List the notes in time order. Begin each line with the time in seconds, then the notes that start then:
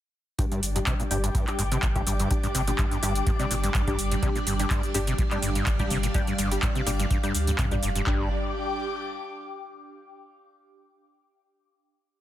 0.38 G2 G3 D4 G4 D5, kick, closed hi-hat, cabasa
0.50 G2 G5, closed hi-hat, cabasa
0.62 G1 G4, open hi-hat, cabasa
0.76 G2 G3 D4 G4, closed hi-hat, cabasa
0.86 C3, kick, clap, closed hi-hat, cabasa
0.96 A#2 D6, closed hi-hat
1.00 cabasa
1.11 G1 G2 G3 D4 G4, open hi-hat, cabasa
1.24 G2, closed hi-hat, cabasa
1.35 G2, kick, closed hi-hat, cabasa
1.47 G3 D4 G4, clap, closed hi-hat, cabasa
1.59 G1 G2, open hi-hat, cabasa
1.72 C3, closed hi-hat, cabasa
1.82 G1 A#2, kick, clap, closed hi-hat, cabasa
1.96 G2 G3 D4 G4, kick, closed hi-hat, cabasa
2.07 G1 G2, open hi-hat, cabasa
2.20 G2, closed hi-hat, cabasa
2.31 G3 D4 G4, kick, closed hi-hat, cabasa
2.43 G2, closed hi-hat, cabasa
2.55 G1 C3, open hi-hat, cabasa
2.67 A#2 G3 D4 G4, closed hi-hat, cabasa
2.78 G2, kick, clap, closed hi-hat, cabasa
2.91 G2, closed hi-hat, cabasa
3.03 G1 G2 G3 D4 G4, open hi-hat, cabasa
3.15 closed hi-hat, cabasa
3.27 G2, kick, closed hi-hat, cabasa
3.39 C3 G3 D4 G4, closed hi-hat, cabasa
3.51 G1 A#2, open hi-hat, cabasa
3.64 G2, closed hi-hat, cabasa
3.74 G1 G2, kick, clap, closed hi-hat, cabasa
3.87 G2 G3 D4 G4, kick, closed hi-hat, cabasa
3.99 G1, open hi-hat, cabasa
4.12 G2, closed hi-hat, cabasa
4.23 C3 G3 D4 G4, kick, closed hi-hat, cabasa
4.36 A#2, closed hi-hat, cabasa
4.47 G1 G2, open hi-hat, cabasa
4.59 G2 G3 D4 G4, closed hi-hat, cabasa
4.70 G2, kick, clap, closed hi-hat, cabasa
4.83 closed hi-hat, cabasa
4.94 G1 G2 G3 D4 G4, open hi-hat, cabasa
5.07 C3, closed hi-hat, cabasa
5.15 A#2 F5, kick, closed hi-hat, cabasa
5.31 G2 G3 D4 G4, clap, closed hi-hat, cabasa
5.42 G1 G2, open hi-hat, cabasa
5.55 G2, closed hi-hat, cabasa
5.66 G1, kick, clap, closed hi-hat, cabasa
5.79 G2 G3 D4 G4, kick, closed hi-hat, cabasa
5.90 G1 C3, open hi-hat, cabasa
6.03 A#2, closed hi-hat, cabasa
6.14 G2 G3 D4 G4, kick, closed hi-hat, cabasa
6.27 G2, closed hi-hat, cabasa
6.38 G1 G2, open hi-hat, cabasa
6.51 G3 D4 G4, closed hi-hat, cabasa
6.62 G2, kick, clap, closed hi-hat, cabasa
6.75 C3, closed hi-hat, cabasa
6.87 G1 A#2 G3 D4 G4, open hi-hat, cabasa
7.00 G2, closed hi-hat, cabasa
7.11 G2, kick, closed hi-hat, cabasa
7.23 G2 G3 D4 G4, closed hi-hat, cabasa
7.35 D2, open hi-hat, cabasa
7.47 G2, closed hi-hat, cabasa
7.58 G2 C3, kick, clap, closed hi-hat, cabasa
7.71 A#2 G3 D4 G4, kick, closed hi-hat, cabasa
7.83 F1 G2, open hi-hat, cabasa
7.95 G2, closed hi-hat, cabasa
8.07 G1 G2 G3 D4 G4 D5, kick, clap
8.14 G4
8.22 G5
8.29 D6